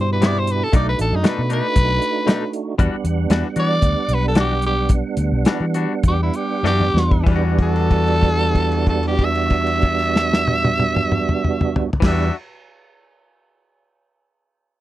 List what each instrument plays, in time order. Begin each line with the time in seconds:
Already playing: fingered electric bass G2, tonewheel organ B2 D4 E4 G4
0.01 tenor saxophone C5
0.13 tenor saxophone B4
0.22 clean electric guitar C3 G3 B3 E4, snare, closed hi-hat
0.26 tenor saxophone D5
0.38 tenor saxophone C5
0.47 closed hi-hat
0.51 tenor saxophone B4
0.64 tenor saxophone A4
0.72 fingered electric bass B1, clean electric guitar B2 A3 D4 D#4, tonewheel organ A3 D4 D#4, kick, closed hi-hat
0.76 tonewheel organ F#4, tenor saxophone D5
0.89 tenor saxophone B4
0.99 fingered electric bass A1, tenor saxophone A4, closed hi-hat
1.12 fingered electric bass F#2, tenor saxophone D#4
1.24 clean electric guitar B2 A3 D4 D#4, snare, closed hi-hat
1.28 tenor saxophone B4
1.38 fingered electric bass B2
1.50 clean electric guitar A3 D4 D#4, tenor saxophone B4, closed hi-hat
1.76 fingered electric bass B1, kick, closed hi-hat
2.02 closed hi-hat
2.27 clean electric guitar B2 A3 D4 D#4, snare, closed hi-hat
2.53 closed hi-hat
2.78 fingered electric bass E2, clean electric guitar E3 G3 D4 F#4, tonewheel organ G3 B3 D4 F#5, kick, closed hi-hat
3.04 fingered electric bass E2, closed hi-hat
3.30 fingered electric bass E2, clean electric guitar E3 G3 D4 F#4, snare, closed hi-hat
3.56 fingered electric bass E3, clean electric guitar G3 D4 F#4, tenor saxophone D5, closed hi-hat
3.82 fingered electric bass D2, kick, closed hi-hat
4.08 fingered electric bass B1, closed hi-hat
4.14 tenor saxophone B4
4.28 tenor saxophone A4
4.35 clean electric guitar E3 G3 D4 F#4, snare, closed hi-hat
4.40 tenor saxophone G4
4.62 closed hi-hat
4.66 tenor saxophone G4
4.89 kick, closed hi-hat
5.17 fingered electric bass D2, closed hi-hat
5.32 fingered electric bass B1
5.45 clean electric guitar E3 G3 D4 F#4, snare, closed hi-hat
5.60 fingered electric bass E3
5.74 clean electric guitar G3 D4 F#4, closed hi-hat
6.03 fingered electric bass E2, kick, closed hi-hat
6.08 tenor saxophone G4
6.23 tenor saxophone E4
6.34 tenor saxophone G4, closed hi-hat
6.63 fingered electric bass F#2, clean electric guitar E3 G3 D4 F#4, snare
6.67 tenor saxophone G4
6.80 mid tom
6.94 fingered electric bass E2, snare
7.11 kick
7.24 fingered electric bass E2, clean electric guitar E3, tonewheel organ G3 B3 D4 F#4, kick, crash
7.28 clean electric guitar G3 D4
7.36 clean electric guitar F#4
7.58 kick, crash
7.63 tenor saxophone A4
7.76 crash
7.91 kick, crash
8.07 crash
8.23 kick, crash
8.39 crash
8.55 kick, crash
8.72 crash
8.87 tenor saxophone A4, kick, crash
9.03 crash
9.08 tenor saxophone G4
9.19 kick, crash
9.24 tenor saxophone E5
9.35 crash
9.50 kick, crash
9.67 crash
9.82 kick, crash
9.99 crash
10.16 snare
10.33 snare
10.48 high tom
10.65 high tom
10.79 high tom
10.96 mid tom
11.12 mid tom
11.29 mid tom
11.44 mid tom
11.61 mid tom
11.76 floor tom
11.93 floor tom
12.00 fingered electric bass E2, clean electric guitar E3, tonewheel organ G3 B3 D4 F#4, kick, snare, crash
12.05 clean electric guitar G3 D4, tenor saxophone E5
12.12 clean electric guitar F#4